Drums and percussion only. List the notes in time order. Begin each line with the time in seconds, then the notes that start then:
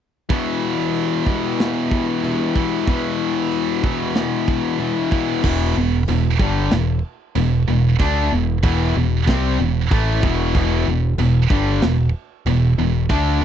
0.30 kick, open hi-hat
0.95 open hi-hat
1.27 kick
1.60 snare, open hi-hat
1.91 kick
2.24 open hi-hat
2.56 kick
2.87 kick, open hi-hat
3.52 open hi-hat
3.84 kick
4.15 snare, open hi-hat
4.48 kick
4.80 open hi-hat
5.12 kick
5.44 kick, crash, china
6.08 china
6.39 kick
6.71 snare, china
7.35 china
8.00 kick, china
8.63 kick, china
9.28 kick, snare, china
9.91 kick, china
10.23 kick
10.55 kick, china
11.18 china
11.50 kick
11.82 snare, china
12.46 china
13.10 kick, china